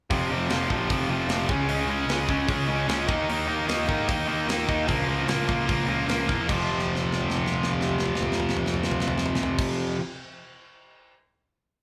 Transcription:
0.10 picked electric bass F1, distorted electric guitar F2 C3 F3, kick, open hi-hat
0.30 picked electric bass F1, distorted electric guitar F2 C3 F3
0.49 picked electric bass F1, distorted electric guitar F2 C3 F3, snare, open hi-hat
0.69 picked electric bass A#1, distorted electric guitar F2 C3 F3, kick
0.89 picked electric bass F1, distorted electric guitar F2 C3 F3, kick, open hi-hat
1.08 picked electric bass F1, distorted electric guitar F2 C3 F3
1.26 picked electric bass F1, distorted electric guitar F2 C3 F3, snare, open hi-hat
1.49 picked electric bass C#2, distorted electric guitar C#3 G#3 C#4, kick
1.66 picked electric bass C#2, distorted electric guitar C#3 G#3 C#4, open hi-hat
1.86 picked electric bass C#2, distorted electric guitar C#3 G#3 C#4
2.07 picked electric bass C#2, distorted electric guitar C#3 G#3, snare, open hi-hat
2.11 distorted electric guitar C#4
2.28 picked electric bass C#2, distorted electric guitar C#3 G#3 C#4, kick
2.48 picked electric bass C#2, distorted electric guitar C#3 G#3 C#4, kick, open hi-hat
2.68 picked electric bass C#2, distorted electric guitar C#3 G#3 C#4
2.87 picked electric bass C#2, distorted electric guitar C#3 G#3 C#4, snare, open hi-hat
3.07 picked electric bass D#2, distorted electric guitar D#3 A#3 D#4, kick
3.29 picked electric bass D#2, distorted electric guitar D#3 A#3 D#4, open hi-hat
3.47 picked electric bass D#2, distorted electric guitar D#3 A#3 D#4
3.67 picked electric bass D#2, distorted electric guitar D#3 A#3 D#4, snare, open hi-hat
3.87 picked electric bass G#2, distorted electric guitar D#3 A#3 D#4, kick
4.08 picked electric bass D#2, distorted electric guitar D#3 A#3 D#4, kick, open hi-hat
4.27 picked electric bass D#2, distorted electric guitar D#3 A#3 D#4
4.47 picked electric bass D#2, distorted electric guitar D#3 A#3 D#4, snare, open hi-hat
4.67 picked electric bass D#2, distorted electric guitar D#3 A#3 D#4, kick
4.86 picked electric bass C#2, distorted electric guitar A#2 F3 A#3, kick, open hi-hat
5.07 picked electric bass C#2, distorted electric guitar A#2 F3 A#3
5.27 picked electric bass C#2, distorted electric guitar A#2 F3 A#3, snare, open hi-hat
5.48 picked electric bass C#2, distorted electric guitar A#2 F3 A#3, kick
5.67 picked electric bass C#2, distorted electric guitar A#2 F3 A#3, kick, open hi-hat
5.87 picked electric bass C#2, distorted electric guitar A#2 F3 A#3
6.06 picked electric bass C#2, distorted electric guitar A#2 F3 A#3, snare, open hi-hat
6.27 picked electric bass E2, distorted electric guitar A#2 F3 A#3, kick
6.47 picked electric bass F1, distorted electric guitar F2 C3, kick, crash
6.51 distorted electric guitar F3
6.69 floor tom
6.79 snare
6.86 floor tom
6.95 snare
7.03 floor tom
7.12 snare
7.21 floor tom
7.30 snare
7.37 floor tom
7.46 snare
7.54 floor tom
7.63 snare
7.71 floor tom
7.81 snare
7.89 floor tom
7.99 snare
8.06 floor tom
8.15 snare
8.23 floor tom
8.32 snare
8.40 floor tom
8.49 snare
8.57 floor tom
8.66 snare
8.74 floor tom
8.83 snare
8.91 floor tom
9.00 snare
9.08 floor tom
9.18 snare
9.26 floor tom
9.35 snare
9.43 floor tom
9.58 kick, crash

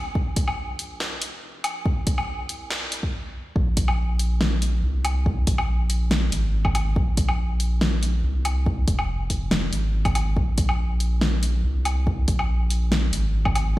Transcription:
Already playing: sub bass A#1
0.15 sub bass A#1, kick
0.36 kick, closed hi-hat
0.48 low woodblock
0.79 sub bass A#1, closed hi-hat
1.00 snare
1.22 sub bass F1, closed hi-hat
1.64 sub bass A#1, closed hi-hat, low woodblock
1.86 kick
2.07 kick, closed hi-hat
2.18 low woodblock
2.49 sub bass C2, closed hi-hat
2.71 snare
2.92 closed hi-hat
3.03 kick
3.56 sub bass A#1, kick
3.77 kick, closed hi-hat
3.88 low woodblock
4.19 closed hi-hat
4.41 snare
4.62 closed hi-hat
4.83 sub bass C2
5.05 closed hi-hat, low woodblock
5.26 kick
5.47 sub bass A#1, kick, closed hi-hat
5.58 low woodblock
5.90 closed hi-hat
6.11 snare
6.32 sub bass G#1, closed hi-hat
6.65 kick, low woodblock
6.75 closed hi-hat, low woodblock
6.96 sub bass A#1, kick
7.17 kick, closed hi-hat
7.29 low woodblock
7.60 closed hi-hat
7.81 snare
8.03 closed hi-hat
8.24 sub bass C2
8.45 closed hi-hat, low woodblock
8.66 kick
8.88 sub bass F1, kick, closed hi-hat
8.99 low woodblock
9.30 kick, closed hi-hat
9.51 snare
9.73 sub bass G#1, closed hi-hat
10.05 kick, closed hi-hat, low woodblock
10.15 closed hi-hat, low woodblock
10.37 sub bass A#1, kick
10.58 kick, closed hi-hat
10.69 low woodblock
11.00 closed hi-hat
11.21 snare
11.43 closed hi-hat
11.64 sub bass C2
11.85 closed hi-hat, low woodblock
12.07 kick
12.28 sub bass A#1, kick, closed hi-hat
12.39 low woodblock
12.70 closed hi-hat
12.92 snare
13.13 sub bass G#1, closed hi-hat
13.45 kick, low woodblock
13.55 closed hi-hat, low woodblock

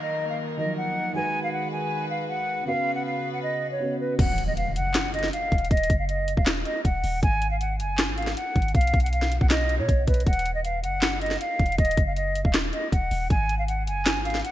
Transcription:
Already playing: grand piano D#3 F3 F#3 A#4, string section D#3 A#3 D#4 A#4, downlifter
0.01 flute D#5
0.29 flute F5
0.57 grand piano D#3 F3 F#3 A#4, flute D#5
0.77 flute F#5
1.13 grand piano D#3 G#3 F#4 B4, string section G#3 F#4 B4, flute G#5
1.44 flute F5
1.53 flute F#5
1.72 flute G#5
2.10 flute F5
2.29 flute F#5
2.65 grand piano C#3 B3 F#4 B4, string section C#3 B3 B4, flute F5
2.95 flute F#5
3.05 flute F5
3.33 flute F#5
3.43 flute D#5
3.72 flute C#5
3.80 grand piano C#3 B3 F#4 B4
4.00 flute B4
4.19 808-style bass D#1, flute F#5, kick, closed hi-hat, crash, impact
4.38 closed hi-hat
4.47 flute D#5
4.57 flute F5, closed hi-hat
4.76 808-style bass F#1, flute F#5, closed hi-hat
4.94 snare, clap, closed hi-hat
5.14 flute D#5, closed hi-hat
5.19 closed hi-hat
5.23 snare, closed hi-hat
5.28 closed hi-hat
5.33 flute F5, closed hi-hat
5.52 808-style bass D#1, kick, closed hi-hat
5.58 closed hi-hat
5.65 closed hi-hat
5.71 808-style bass D#1, flute D#5, kick, closed hi-hat
5.77 closed hi-hat
5.83 closed hi-hat
5.90 808-style bass F#1, kick, closed hi-hat
5.99 flute F5
6.09 flute D#5, closed hi-hat
6.28 closed hi-hat
6.37 808-style bass D#1, flute F5, kick
6.46 snare, clap, closed hi-hat
6.65 flute D#5, closed hi-hat
6.85 808-style bass D#1, flute F#5, kick, closed hi-hat
7.04 808-style bass D#1, open hi-hat
7.23 808-style bass G#1, flute G#5, kick, closed hi-hat
7.42 closed hi-hat
7.51 flute F5
7.60 flute F#5, closed hi-hat
7.80 808-style bass F#1, flute G#5, closed hi-hat
7.98 snare, clap, closed hi-hat
8.08 808-style bass G#1
8.17 flute F5, closed hi-hat
8.22 closed hi-hat
8.27 snare, closed hi-hat
8.32 closed hi-hat
8.36 flute F#5, closed hi-hat
8.56 808-style bass G#1, kick, closed hi-hat
8.62 closed hi-hat
8.68 closed hi-hat
8.75 808-style bass B1, flute F5, kick, closed hi-hat
8.81 closed hi-hat
8.87 closed hi-hat
8.94 808-style bass B1, kick, closed hi-hat
9.00 flute F#5, closed hi-hat
9.06 closed hi-hat
9.13 flute F5, closed hi-hat
9.22 snare
9.32 closed hi-hat
9.41 808-style bass B1, flute F#5, kick
9.50 flute D#5, snare, clap, closed hi-hat
9.69 closed hi-hat
9.79 808-style bass B2, flute C#5
9.89 808-style bass B1, kick, closed hi-hat
10.07 808-style bass B1, flute B4, kick, closed hi-hat, open hi-hat
10.14 closed hi-hat
10.20 closed hi-hat
10.27 808-style bass D#1, flute F#5, kick, closed hi-hat
10.33 closed hi-hat
10.39 closed hi-hat
10.46 closed hi-hat
10.55 flute D#5
10.64 flute F5, closed hi-hat
10.84 808-style bass F#1, flute F#5, closed hi-hat
11.02 snare, clap, closed hi-hat
11.22 flute D#5, closed hi-hat
11.26 closed hi-hat
11.31 snare, closed hi-hat
11.36 closed hi-hat
11.41 flute F5, closed hi-hat
11.59 808-style bass D#1, kick, closed hi-hat
11.66 closed hi-hat
11.72 closed hi-hat
11.78 808-style bass D#1, flute D#5, kick, closed hi-hat
11.85 closed hi-hat
11.91 closed hi-hat
11.97 808-style bass F#1, kick, closed hi-hat
12.07 flute F5
12.16 flute D#5, closed hi-hat
12.35 closed hi-hat
12.45 808-style bass D#1, flute F5, kick
12.54 snare, clap, closed hi-hat
12.73 flute D#5, closed hi-hat
12.92 808-style bass D#1, flute F#5, kick, closed hi-hat
13.11 808-style bass D#1, open hi-hat
13.30 808-style bass G#1, flute G#5, kick, closed hi-hat
13.49 closed hi-hat
13.59 flute F5
13.68 flute F#5, closed hi-hat
13.87 808-style bass F#1, flute G#5, closed hi-hat
14.05 snare, clap, closed hi-hat
14.16 808-style bass G#1
14.25 flute F5, closed hi-hat
14.30 closed hi-hat
14.35 snare, closed hi-hat
14.40 closed hi-hat
14.44 flute F#5, closed hi-hat

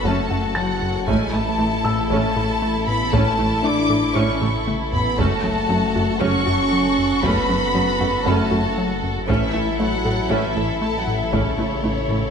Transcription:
Already playing: detuned saw bass F#1, violin section F#4 A4
0.04 double bass section F#1, analog synth bass F#2, cello section F#2, synth arpeggio sound F#3, french horn section A3, viola section A3 C#4, violin section A5
0.30 double bass section F#1, analog synth bass F#2, cello section F#2, viola section A3, synth arpeggio sound F#4
0.55 analog synth bass F#3, french horn section F#3, violin section F#5, felt piano A5 A6
0.82 analog synth bass F#2
1.06 detuned saw bass A1, double bass section A1, analog synth bass A2, cello section A2, french horn section G#3, viola section A3 C#4, synth arpeggio sound A3, violin section E4 A4 G#5, taiko
1.33 double bass section A1, cello section A2, viola section A3, analog synth bass A3, french horn section A3, synth arpeggio sound E4, violin section A5
1.59 double bass section A1, cello section A2, viola section E3 A3, analog synth bass A3, synth arpeggio sound E4
1.84 double bass section A1, cello section A2, analog synth bass A2, viola section A3, synth arpeggio sound A4, felt piano E6
2.09 double bass section A1, cello section A2, analog synth bass A2, synth arpeggio sound A3, viola section A3 C#4, french horn section A3, violin section A5
2.36 double bass section A1, cello section A2, analog synth bass A2, viola section A3, synth arpeggio sound A4
2.62 analog synth bass A3
2.88 analog synth bass A2, french horn section B3, violin section B5
3.13 double bass section A1, cello section A2, analog synth bass A2, viola section A3 C#4, synth arpeggio sound A3, french horn section A3, violin section A5, taiko
3.39 double bass section A1, cello section A2, analog synth bass A3, viola section A3, synth arpeggio sound E4
3.64 double bass section A1, cello section A2, viola section E3 A3, analog synth bass A3, french horn section D4, synth arpeggio sound E4, violin section D6
3.90 double bass section A1, analog synth bass A2, cello section A2, viola section A3, synth arpeggio sound A4
4.15 double bass section A1, analog synth bass A2, cello section A2, viola section A3 C#4, synth arpeggio sound A3, french horn section C#4, violin section C#6
4.41 double bass section A1, cello section A2, analog synth bass A2, viola section A3, synth arpeggio sound A4, taiko mid
4.68 analog synth bass A3, taiko mid
4.92 analog synth bass A2, french horn section B3, violin section B5, taiko low
5.18 detuned saw bass F#1, double bass section F#1, cello section F#2, analog synth bass F#2, synth arpeggio sound F#3, viola section A3 C#4, french horn section A3, violin section F#4 A4 A5, taiko
5.44 double bass section F#1, cello section F#2, analog synth bass F#3, viola section A3, synth arpeggio sound C#4
5.69 double bass section F#1, cello section F#2, analog synth bass F#3, viola section F#3 A3, synth arpeggio sound C#4
5.95 double bass section F#1, analog synth bass F#2, cello section F#2, viola section A3, synth arpeggio sound F#4
6.20 double bass section F#1, cello section F#2, analog synth bass F#2, synth arpeggio sound F#3, viola section A3 C#4, french horn section C#4, violin section C#6
6.46 double bass section F#1, cello section F#2, analog synth bass F#2, viola section A3, synth arpeggio sound F#4
6.73 analog synth bass F#3
6.99 analog synth bass F#2
7.23 double bass section F#1, cello section F#2, analog synth bass F#2, synth arpeggio sound F#3, viola section A3 C#4, french horn section B3, violin section B5, taiko
7.49 double bass section F#1, cello section F#2, analog synth bass F#3, viola section A3, synth arpeggio sound C#4
7.74 double bass section F#1, cello section F#2, viola section F#3 A3, analog synth bass F#3, synth arpeggio sound C#4
8.00 double bass section F#1, cello section F#2, analog synth bass F#2, viola section A3, synth arpeggio sound F#4
8.25 double bass section F#1, cello section F#2, analog synth bass F#2, synth arpeggio sound F#3, viola section A3 C#4, french horn section A3, violin section A5, felt piano B5
8.51 double bass section F#1, analog synth bass F#2, cello section F#2, viola section A3, synth arpeggio sound F#4
8.78 analog synth bass F#3
9.04 analog synth bass F#2
9.28 double bass section A1, detuned saw bass A1, cello section A2, analog synth bass A2, french horn section E3, viola section A3 C#4, synth arpeggio sound A3, violin section E4 A4 E5, taiko
9.53 double bass section A1, cello section A2, viola section A3, analog synth bass A3, synth arpeggio sound E4
9.79 double bass section A1, cello section A2, viola section E3 A3, french horn section F#3, analog synth bass A3, synth arpeggio sound E4, violin section F#5
10.04 double bass section A1, cello section A2, analog synth bass A2, viola section A3, synth arpeggio sound A4
10.29 double bass section A1, analog synth bass A2, cello section A2, viola section A3 C#4, synth arpeggio sound A3, violin section E5
10.33 french horn section E3
10.55 double bass section A1, cello section A2, analog synth bass A2, viola section A3, synth arpeggio sound A4
10.81 analog synth bass A3, french horn section A3, violin section A5
10.99 french horn section F#3, violin section F#5
11.08 analog synth bass A2
11.16 french horn section E3, violin section E5
11.33 double bass section A1, analog synth bass A2, cello section A2, french horn section C#3, viola section A3 C#4, synth arpeggio sound A3, violin section C#5, taiko
11.58 double bass section A1, cello section A2, analog synth bass A3, viola section A3, synth arpeggio sound E4
11.84 double bass section A1, cello section A2, viola section E3 A3, analog synth bass A3, synth arpeggio sound E4
12.09 double bass section A1, analog synth bass A2, cello section A2, viola section A3, synth arpeggio sound A4

